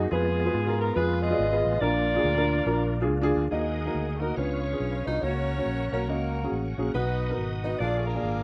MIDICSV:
0, 0, Header, 1, 6, 480
1, 0, Start_track
1, 0, Tempo, 427046
1, 130, Time_signature, 4, 2, 24, 8
1, 9479, End_track
2, 0, Start_track
2, 0, Title_t, "Tonewheel organ"
2, 0, Program_c, 0, 16
2, 124, Note_on_c, 0, 56, 67
2, 125, Note_on_c, 0, 65, 79
2, 126, Note_on_c, 0, 59, 65
2, 2014, Note_off_c, 0, 56, 0
2, 2015, Note_off_c, 0, 59, 0
2, 2036, Note_on_c, 0, 62, 64
2, 2038, Note_on_c, 0, 58, 70
2, 3910, Note_off_c, 0, 65, 0
2, 3931, Note_off_c, 0, 62, 0
2, 3933, Note_off_c, 0, 58, 0
2, 3955, Note_on_c, 0, 70, 59
2, 3955, Note_on_c, 0, 78, 53
2, 3956, Note_on_c, 0, 87, 63
2, 3957, Note_on_c, 0, 75, 55
2, 4905, Note_off_c, 0, 70, 0
2, 4905, Note_off_c, 0, 78, 0
2, 4905, Note_off_c, 0, 87, 0
2, 4906, Note_off_c, 0, 75, 0
2, 4909, Note_on_c, 0, 73, 55
2, 4910, Note_on_c, 0, 77, 52
2, 4911, Note_on_c, 0, 85, 62
2, 4912, Note_on_c, 0, 71, 54
2, 5861, Note_off_c, 0, 73, 0
2, 5865, Note_off_c, 0, 77, 0
2, 5866, Note_off_c, 0, 71, 0
2, 5872, Note_on_c, 0, 78, 51
2, 5874, Note_on_c, 0, 73, 53
2, 5875, Note_on_c, 0, 70, 55
2, 7775, Note_off_c, 0, 85, 0
2, 7785, Note_off_c, 0, 73, 0
2, 7786, Note_off_c, 0, 70, 0
2, 7801, Note_on_c, 0, 71, 59
2, 7802, Note_on_c, 0, 75, 53
2, 7802, Note_on_c, 0, 87, 68
2, 8739, Note_off_c, 0, 78, 0
2, 8758, Note_off_c, 0, 71, 0
2, 8759, Note_off_c, 0, 75, 0
2, 8759, Note_off_c, 0, 87, 0
2, 8770, Note_on_c, 0, 86, 67
2, 8771, Note_on_c, 0, 80, 53
2, 8772, Note_on_c, 0, 70, 62
2, 8772, Note_on_c, 0, 77, 55
2, 9479, Note_off_c, 0, 70, 0
2, 9479, Note_off_c, 0, 77, 0
2, 9479, Note_off_c, 0, 80, 0
2, 9479, Note_off_c, 0, 86, 0
2, 9479, End_track
3, 0, Start_track
3, 0, Title_t, "Saxophone section"
3, 0, Program_c, 1, 65
3, 128, Note_on_c, 1, 68, 98
3, 135, Note_on_c, 1, 59, 74
3, 135, Note_on_c, 1, 65, 71
3, 859, Note_off_c, 1, 68, 0
3, 904, Note_on_c, 1, 70, 100
3, 1040, Note_off_c, 1, 59, 0
3, 1040, Note_off_c, 1, 65, 0
3, 1070, Note_off_c, 1, 70, 0
3, 1079, Note_on_c, 1, 71, 105
3, 1085, Note_on_c, 1, 68, 74
3, 1086, Note_on_c, 1, 65, 84
3, 1361, Note_off_c, 1, 68, 0
3, 1361, Note_off_c, 1, 71, 0
3, 1370, Note_on_c, 1, 75, 118
3, 1375, Note_on_c, 1, 68, 89
3, 1375, Note_on_c, 1, 71, 88
3, 1988, Note_off_c, 1, 68, 0
3, 1988, Note_off_c, 1, 71, 0
3, 1993, Note_off_c, 1, 65, 0
3, 2030, Note_off_c, 1, 75, 0
3, 2031, Note_on_c, 1, 74, 106
3, 2032, Note_on_c, 1, 70, 79
3, 2034, Note_on_c, 1, 65, 86
3, 3424, Note_off_c, 1, 70, 0
3, 3425, Note_off_c, 1, 65, 0
3, 3469, Note_off_c, 1, 74, 0
3, 3944, Note_on_c, 1, 68, 80
3, 3947, Note_on_c, 1, 63, 53
3, 4684, Note_off_c, 1, 68, 0
3, 4719, Note_on_c, 1, 70, 73
3, 4865, Note_off_c, 1, 63, 0
3, 4896, Note_on_c, 1, 73, 87
3, 4905, Note_off_c, 1, 70, 0
3, 4911, Note_on_c, 1, 65, 66
3, 4912, Note_on_c, 1, 68, 63
3, 5683, Note_on_c, 1, 75, 85
3, 5688, Note_off_c, 1, 73, 0
3, 5830, Note_off_c, 1, 65, 0
3, 5831, Note_off_c, 1, 68, 0
3, 5863, Note_on_c, 1, 73, 99
3, 5869, Note_off_c, 1, 75, 0
3, 5878, Note_on_c, 1, 66, 68
3, 5881, Note_on_c, 1, 70, 71
3, 6647, Note_off_c, 1, 73, 0
3, 6660, Note_on_c, 1, 73, 84
3, 6796, Note_off_c, 1, 66, 0
3, 6798, Note_off_c, 1, 70, 0
3, 6828, Note_off_c, 1, 73, 0
3, 6844, Note_on_c, 1, 70, 79
3, 6854, Note_on_c, 1, 66, 61
3, 6858, Note_on_c, 1, 61, 59
3, 7325, Note_off_c, 1, 70, 0
3, 7767, Note_off_c, 1, 66, 0
3, 7769, Note_off_c, 1, 61, 0
3, 7814, Note_on_c, 1, 71, 94
3, 7826, Note_on_c, 1, 66, 71
3, 7827, Note_on_c, 1, 63, 71
3, 8258, Note_off_c, 1, 71, 0
3, 8572, Note_on_c, 1, 75, 85
3, 8735, Note_off_c, 1, 66, 0
3, 8736, Note_off_c, 1, 63, 0
3, 8747, Note_off_c, 1, 75, 0
3, 8750, Note_on_c, 1, 74, 92
3, 8772, Note_on_c, 1, 65, 65
3, 8772, Note_on_c, 1, 68, 67
3, 9060, Note_on_c, 1, 70, 91
3, 9062, Note_off_c, 1, 74, 0
3, 9066, Note_off_c, 1, 65, 0
3, 9076, Note_on_c, 1, 62, 67
3, 9079, Note_on_c, 1, 65, 63
3, 9479, Note_off_c, 1, 62, 0
3, 9479, Note_off_c, 1, 65, 0
3, 9479, Note_off_c, 1, 68, 0
3, 9479, Note_off_c, 1, 70, 0
3, 9479, End_track
4, 0, Start_track
4, 0, Title_t, "Upright piano"
4, 0, Program_c, 2, 0
4, 123, Note_on_c, 2, 65, 80
4, 133, Note_on_c, 2, 68, 74
4, 142, Note_on_c, 2, 71, 88
4, 396, Note_off_c, 2, 65, 0
4, 401, Note_off_c, 2, 68, 0
4, 405, Note_off_c, 2, 71, 0
4, 507, Note_on_c, 2, 65, 71
4, 515, Note_on_c, 2, 68, 68
4, 521, Note_on_c, 2, 71, 81
4, 631, Note_off_c, 2, 65, 0
4, 635, Note_off_c, 2, 68, 0
4, 638, Note_off_c, 2, 71, 0
4, 747, Note_on_c, 2, 65, 78
4, 755, Note_on_c, 2, 68, 67
4, 764, Note_on_c, 2, 70, 75
4, 972, Note_off_c, 2, 65, 0
4, 976, Note_off_c, 2, 68, 0
4, 980, Note_off_c, 2, 70, 0
4, 1073, Note_on_c, 2, 65, 80
4, 1084, Note_on_c, 2, 68, 68
4, 1091, Note_on_c, 2, 71, 78
4, 1347, Note_off_c, 2, 65, 0
4, 1353, Note_off_c, 2, 68, 0
4, 1357, Note_off_c, 2, 71, 0
4, 1462, Note_on_c, 2, 65, 81
4, 1470, Note_on_c, 2, 68, 68
4, 1476, Note_on_c, 2, 74, 76
4, 1586, Note_off_c, 2, 65, 0
4, 1589, Note_off_c, 2, 68, 0
4, 1593, Note_off_c, 2, 74, 0
4, 1699, Note_on_c, 2, 65, 81
4, 1708, Note_on_c, 2, 68, 78
4, 1718, Note_on_c, 2, 71, 87
4, 1925, Note_off_c, 2, 65, 0
4, 1929, Note_off_c, 2, 68, 0
4, 1934, Note_off_c, 2, 71, 0
4, 2033, Note_on_c, 2, 62, 78
4, 2040, Note_on_c, 2, 46, 60
4, 2041, Note_on_c, 2, 65, 70
4, 2048, Note_on_c, 2, 70, 86
4, 2304, Note_off_c, 2, 62, 0
4, 2309, Note_off_c, 2, 65, 0
4, 2312, Note_off_c, 2, 70, 0
4, 2413, Note_on_c, 2, 62, 78
4, 2422, Note_on_c, 2, 65, 72
4, 2428, Note_on_c, 2, 68, 81
4, 2539, Note_off_c, 2, 62, 0
4, 2543, Note_off_c, 2, 65, 0
4, 2546, Note_off_c, 2, 68, 0
4, 2652, Note_on_c, 2, 62, 90
4, 2663, Note_on_c, 2, 65, 77
4, 2673, Note_on_c, 2, 70, 94
4, 2770, Note_off_c, 2, 46, 0
4, 2880, Note_off_c, 2, 62, 0
4, 2885, Note_off_c, 2, 65, 0
4, 2890, Note_off_c, 2, 70, 0
4, 2983, Note_on_c, 2, 62, 87
4, 2989, Note_on_c, 2, 65, 73
4, 2997, Note_on_c, 2, 70, 86
4, 3258, Note_off_c, 2, 62, 0
4, 3261, Note_off_c, 2, 65, 0
4, 3266, Note_off_c, 2, 70, 0
4, 3376, Note_on_c, 2, 62, 85
4, 3383, Note_on_c, 2, 65, 85
4, 3394, Note_on_c, 2, 68, 90
4, 3499, Note_off_c, 2, 62, 0
4, 3502, Note_off_c, 2, 65, 0
4, 3508, Note_off_c, 2, 68, 0
4, 3614, Note_on_c, 2, 62, 98
4, 3626, Note_on_c, 2, 65, 83
4, 3633, Note_on_c, 2, 68, 109
4, 3840, Note_off_c, 2, 62, 0
4, 3846, Note_off_c, 2, 65, 0
4, 3849, Note_off_c, 2, 68, 0
4, 3946, Note_on_c, 2, 58, 60
4, 3951, Note_on_c, 2, 63, 58
4, 3952, Note_on_c, 2, 51, 55
4, 3956, Note_on_c, 2, 66, 57
4, 3961, Note_on_c, 2, 75, 76
4, 4220, Note_off_c, 2, 58, 0
4, 4223, Note_off_c, 2, 63, 0
4, 4225, Note_off_c, 2, 66, 0
4, 4227, Note_off_c, 2, 75, 0
4, 4334, Note_on_c, 2, 58, 59
4, 4339, Note_on_c, 2, 63, 53
4, 4345, Note_on_c, 2, 66, 54
4, 4352, Note_on_c, 2, 70, 68
4, 4549, Note_off_c, 2, 58, 0
4, 4551, Note_off_c, 2, 63, 0
4, 4554, Note_off_c, 2, 66, 0
4, 4558, Note_off_c, 2, 70, 0
4, 4688, Note_off_c, 2, 51, 0
4, 4722, Note_on_c, 2, 58, 65
4, 4727, Note_on_c, 2, 63, 57
4, 4735, Note_on_c, 2, 66, 68
4, 4737, Note_on_c, 2, 70, 74
4, 4836, Note_off_c, 2, 58, 0
4, 4838, Note_off_c, 2, 63, 0
4, 4842, Note_off_c, 2, 66, 0
4, 4843, Note_off_c, 2, 70, 0
4, 4906, Note_on_c, 2, 59, 65
4, 4914, Note_on_c, 2, 62, 56
4, 4916, Note_on_c, 2, 49, 53
4, 4918, Note_on_c, 2, 65, 56
4, 4926, Note_on_c, 2, 73, 66
4, 5182, Note_off_c, 2, 59, 0
4, 5185, Note_off_c, 2, 62, 0
4, 5188, Note_off_c, 2, 65, 0
4, 5191, Note_off_c, 2, 73, 0
4, 5300, Note_on_c, 2, 59, 54
4, 5304, Note_on_c, 2, 62, 58
4, 5310, Note_on_c, 2, 65, 56
4, 5316, Note_on_c, 2, 68, 69
4, 5514, Note_off_c, 2, 59, 0
4, 5515, Note_off_c, 2, 62, 0
4, 5518, Note_off_c, 2, 65, 0
4, 5521, Note_off_c, 2, 68, 0
4, 5653, Note_off_c, 2, 49, 0
4, 5693, Note_on_c, 2, 59, 58
4, 5701, Note_on_c, 2, 62, 58
4, 5703, Note_on_c, 2, 65, 58
4, 5710, Note_on_c, 2, 71, 66
4, 5803, Note_off_c, 2, 59, 0
4, 5807, Note_off_c, 2, 62, 0
4, 5807, Note_off_c, 2, 65, 0
4, 5811, Note_off_c, 2, 71, 0
4, 5871, Note_on_c, 2, 58, 64
4, 5877, Note_on_c, 2, 61, 54
4, 5879, Note_on_c, 2, 49, 55
4, 5883, Note_on_c, 2, 66, 57
4, 5890, Note_on_c, 2, 73, 66
4, 6146, Note_off_c, 2, 58, 0
4, 6149, Note_off_c, 2, 61, 0
4, 6152, Note_off_c, 2, 66, 0
4, 6156, Note_off_c, 2, 73, 0
4, 6260, Note_on_c, 2, 58, 57
4, 6269, Note_on_c, 2, 61, 60
4, 6273, Note_on_c, 2, 66, 49
4, 6280, Note_on_c, 2, 73, 64
4, 6476, Note_off_c, 2, 58, 0
4, 6480, Note_off_c, 2, 61, 0
4, 6482, Note_off_c, 2, 66, 0
4, 6485, Note_off_c, 2, 73, 0
4, 6617, Note_off_c, 2, 49, 0
4, 6648, Note_on_c, 2, 58, 66
4, 6658, Note_on_c, 2, 61, 62
4, 6662, Note_on_c, 2, 66, 66
4, 6667, Note_on_c, 2, 70, 81
4, 6763, Note_off_c, 2, 58, 0
4, 6767, Note_off_c, 2, 61, 0
4, 6769, Note_off_c, 2, 66, 0
4, 6772, Note_off_c, 2, 70, 0
4, 6835, Note_on_c, 2, 58, 60
4, 6844, Note_on_c, 2, 61, 59
4, 6849, Note_on_c, 2, 66, 51
4, 6854, Note_on_c, 2, 75, 73
4, 7111, Note_off_c, 2, 58, 0
4, 7115, Note_off_c, 2, 61, 0
4, 7118, Note_off_c, 2, 66, 0
4, 7120, Note_off_c, 2, 75, 0
4, 7226, Note_on_c, 2, 58, 59
4, 7231, Note_on_c, 2, 61, 54
4, 7237, Note_on_c, 2, 66, 58
4, 7243, Note_on_c, 2, 68, 69
4, 7441, Note_off_c, 2, 58, 0
4, 7444, Note_off_c, 2, 61, 0
4, 7447, Note_off_c, 2, 66, 0
4, 7450, Note_off_c, 2, 68, 0
4, 7617, Note_on_c, 2, 58, 66
4, 7625, Note_on_c, 2, 61, 72
4, 7627, Note_on_c, 2, 66, 66
4, 7634, Note_on_c, 2, 68, 82
4, 7729, Note_off_c, 2, 58, 0
4, 7733, Note_off_c, 2, 61, 0
4, 7734, Note_off_c, 2, 66, 0
4, 7738, Note_off_c, 2, 68, 0
4, 7803, Note_on_c, 2, 59, 65
4, 7807, Note_on_c, 2, 63, 55
4, 7812, Note_on_c, 2, 47, 58
4, 7816, Note_on_c, 2, 66, 54
4, 7819, Note_on_c, 2, 75, 66
4, 8077, Note_off_c, 2, 59, 0
4, 8079, Note_off_c, 2, 63, 0
4, 8083, Note_off_c, 2, 66, 0
4, 8085, Note_off_c, 2, 75, 0
4, 8194, Note_on_c, 2, 59, 61
4, 8200, Note_on_c, 2, 63, 55
4, 8207, Note_on_c, 2, 66, 63
4, 8213, Note_on_c, 2, 70, 75
4, 8407, Note_off_c, 2, 59, 0
4, 8410, Note_off_c, 2, 63, 0
4, 8414, Note_off_c, 2, 66, 0
4, 8417, Note_off_c, 2, 70, 0
4, 8548, Note_off_c, 2, 47, 0
4, 8586, Note_on_c, 2, 59, 75
4, 8593, Note_on_c, 2, 63, 65
4, 8598, Note_on_c, 2, 66, 68
4, 8601, Note_on_c, 2, 75, 71
4, 8696, Note_off_c, 2, 59, 0
4, 8700, Note_off_c, 2, 63, 0
4, 8702, Note_off_c, 2, 66, 0
4, 8703, Note_off_c, 2, 75, 0
4, 8761, Note_on_c, 2, 58, 55
4, 8768, Note_on_c, 2, 65, 59
4, 8770, Note_on_c, 2, 46, 52
4, 8773, Note_on_c, 2, 68, 54
4, 8778, Note_on_c, 2, 74, 69
4, 9038, Note_off_c, 2, 58, 0
4, 9042, Note_off_c, 2, 65, 0
4, 9044, Note_off_c, 2, 68, 0
4, 9047, Note_off_c, 2, 74, 0
4, 9155, Note_on_c, 2, 58, 66
4, 9162, Note_on_c, 2, 65, 58
4, 9167, Note_on_c, 2, 68, 54
4, 9175, Note_on_c, 2, 74, 71
4, 9370, Note_off_c, 2, 58, 0
4, 9374, Note_off_c, 2, 65, 0
4, 9376, Note_off_c, 2, 68, 0
4, 9380, Note_off_c, 2, 74, 0
4, 9479, Note_off_c, 2, 46, 0
4, 9479, End_track
5, 0, Start_track
5, 0, Title_t, "Tenor saxophone"
5, 0, Program_c, 3, 66
5, 3968, Note_on_c, 3, 56, 72
5, 4669, Note_on_c, 3, 57, 62
5, 4686, Note_off_c, 3, 56, 0
5, 4744, Note_on_c, 3, 58, 68
5, 4761, Note_off_c, 3, 57, 0
5, 4920, Note_on_c, 3, 61, 78
5, 4936, Note_off_c, 3, 58, 0
5, 5694, Note_off_c, 3, 61, 0
5, 5701, Note_on_c, 3, 63, 94
5, 5884, Note_on_c, 3, 61, 89
5, 5901, Note_off_c, 3, 63, 0
5, 6661, Note_off_c, 3, 61, 0
5, 6668, Note_on_c, 3, 61, 75
5, 6844, Note_on_c, 3, 58, 73
5, 6861, Note_off_c, 3, 61, 0
5, 7325, Note_off_c, 3, 58, 0
5, 7807, Note_on_c, 3, 59, 83
5, 8255, Note_off_c, 3, 59, 0
5, 8592, Note_on_c, 3, 63, 84
5, 8771, Note_on_c, 3, 62, 84
5, 8788, Note_off_c, 3, 63, 0
5, 8974, Note_on_c, 3, 57, 60
5, 8991, Note_off_c, 3, 62, 0
5, 9074, Note_on_c, 3, 58, 81
5, 9091, Note_off_c, 3, 57, 0
5, 9479, Note_off_c, 3, 58, 0
5, 9479, End_track
6, 0, Start_track
6, 0, Title_t, "Fingered electric bass"
6, 0, Program_c, 4, 33
6, 131, Note_on_c, 4, 41, 114
6, 536, Note_off_c, 4, 41, 0
6, 608, Note_on_c, 4, 44, 96
6, 1012, Note_off_c, 4, 44, 0
6, 1083, Note_on_c, 4, 41, 112
6, 1488, Note_off_c, 4, 41, 0
6, 1559, Note_on_c, 4, 32, 102
6, 1813, Note_off_c, 4, 32, 0
6, 1856, Note_on_c, 4, 33, 90
6, 2008, Note_off_c, 4, 33, 0
6, 2036, Note_on_c, 4, 34, 106
6, 2442, Note_off_c, 4, 34, 0
6, 2517, Note_on_c, 4, 38, 94
6, 2922, Note_off_c, 4, 38, 0
6, 2993, Note_on_c, 4, 34, 100
6, 3472, Note_off_c, 4, 34, 0
6, 3472, Note_on_c, 4, 37, 101
6, 3727, Note_off_c, 4, 37, 0
6, 3775, Note_on_c, 4, 38, 84
6, 3926, Note_off_c, 4, 38, 0
6, 3955, Note_on_c, 4, 39, 80
6, 4362, Note_off_c, 4, 39, 0
6, 4435, Note_on_c, 4, 38, 76
6, 4842, Note_off_c, 4, 38, 0
6, 4915, Note_on_c, 4, 37, 91
6, 5323, Note_off_c, 4, 37, 0
6, 5397, Note_on_c, 4, 35, 77
6, 5652, Note_off_c, 4, 35, 0
6, 5695, Note_on_c, 4, 36, 73
6, 5849, Note_off_c, 4, 36, 0
6, 5874, Note_on_c, 4, 37, 90
6, 6285, Note_off_c, 4, 37, 0
6, 6361, Note_on_c, 4, 34, 72
6, 6617, Note_off_c, 4, 34, 0
6, 6662, Note_on_c, 4, 35, 78
6, 6842, Note_off_c, 4, 35, 0
6, 6842, Note_on_c, 4, 37, 85
6, 7251, Note_off_c, 4, 37, 0
6, 7325, Note_on_c, 4, 33, 84
6, 7581, Note_off_c, 4, 33, 0
6, 7622, Note_on_c, 4, 34, 73
6, 7776, Note_off_c, 4, 34, 0
6, 7803, Note_on_c, 4, 35, 92
6, 8214, Note_off_c, 4, 35, 0
6, 8286, Note_on_c, 4, 32, 69
6, 8697, Note_off_c, 4, 32, 0
6, 8769, Note_on_c, 4, 34, 88
6, 9179, Note_off_c, 4, 34, 0
6, 9253, Note_on_c, 4, 32, 82
6, 9479, Note_off_c, 4, 32, 0
6, 9479, End_track
0, 0, End_of_file